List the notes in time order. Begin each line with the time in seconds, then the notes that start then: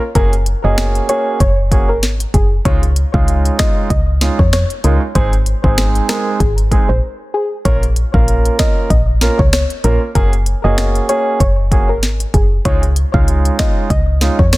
0.15 F#1 A#3 C#4 F#4 G#4 A#4, kick, closed hi-hat
0.33 closed hi-hat
0.46 closed hi-hat
0.64 F#1 A#3 C#4 F#4 G#4 D#5
0.78 finger snap, snare, closed hi-hat
0.95 closed hi-hat
1.09 A#3 C#4 F#4 G#4 C#5, closed hi-hat
1.40 F#1 C#5, kick, closed hi-hat
1.71 A#3 C#4 F#4 G#4, kick, closed hi-hat
1.89 G#1 A#4
2.03 snare, closed hi-hat
2.20 closed hi-hat
2.34 F#1 G#4, kick, closed hi-hat
2.65 C#2 G#3 C#4 D#4 F4 C#5, kick, closed hi-hat
2.83 closed hi-hat
2.96 closed hi-hat
3.14 C#2 G#3 C#4 D#4 F4 F5, kick
3.28 closed hi-hat
3.45 closed hi-hat
3.59 G#3 C#4 D#4 F4 D#5, finger snap, kick, snare, closed hi-hat
3.90 C#2 D#5, kick, closed hi-hat
4.21 G#3 C#4 D#4 F4, snare, closed hi-hat
4.39 F2 C#5, kick
4.53 C#5, finger snap, snare, closed hi-hat
4.70 closed hi-hat
4.84 C#2 G#3 C#4 D#4 F4 A#4, closed hi-hat
5.15 G#1 G#3 C4 D#4 G#4 C5, kick, closed hi-hat
5.33 closed hi-hat
5.46 closed hi-hat
5.64 G#1 G#3 C4 D#4 G#4 C5, kick
5.78 finger snap, snare, closed hi-hat
5.95 closed hi-hat
6.09 G#3 C4 D#4 G#4 A#4, finger snap, snare, closed hi-hat
6.40 G#1 G#4, kick, closed hi-hat
6.58 closed hi-hat
6.71 G#3 C4 D#4 G#4, kick, closed hi-hat
6.89 A#1 C5
7.34 G#4
7.65 A#1 A#3 C#4 F4 A#4 C#5, kick, closed hi-hat
7.83 closed hi-hat
7.96 closed hi-hat
8.14 A#1 A#3 C#4 F4 A#4 F5, kick
8.28 closed hi-hat
8.45 closed hi-hat
8.59 A#3 C#4 F4 A#4 D#5, finger snap, kick, snare, closed hi-hat
8.90 A#1 D#5, kick, closed hi-hat
9.21 A#3 C#4 F4 A#4, snare, closed hi-hat
9.39 C#2 C#5, kick
9.53 C#5, finger snap, snare, closed hi-hat
9.70 closed hi-hat
9.84 A#1 A#3 C#4 F4 A#4, closed hi-hat
10.15 F#1 A#3 C#4 F#4 G#4 A#4, kick, closed hi-hat
10.33 closed hi-hat
10.46 closed hi-hat
10.64 F#1 A#3 C#4 F#4 G#4 D#5
10.78 finger snap, snare, closed hi-hat
10.95 closed hi-hat
11.09 A#3 C#4 F#4 G#4 C#5, closed hi-hat
11.40 F#1 C#5, kick, closed hi-hat
11.71 A#3 C#4 F#4 G#4, kick, closed hi-hat
11.89 G#1 A#4
12.03 snare, closed hi-hat
12.20 closed hi-hat
12.34 F#1 G#4, kick, closed hi-hat
12.65 C#2 G#3 C#4 D#4 F4 C#5, kick, closed hi-hat
12.83 closed hi-hat
12.96 closed hi-hat
13.14 C#2 G#3 C#4 D#4 F4 F5, kick
13.28 closed hi-hat
13.45 closed hi-hat
13.59 C#4 D#4 F4 D#5, finger snap, kick, snare, closed hi-hat
13.90 C#2 D#5, kick, closed hi-hat
14.21 G#3 C#4 D#4 F4, snare, closed hi-hat
14.39 F2 C#5, kick
14.53 C#5, finger snap, snare, closed hi-hat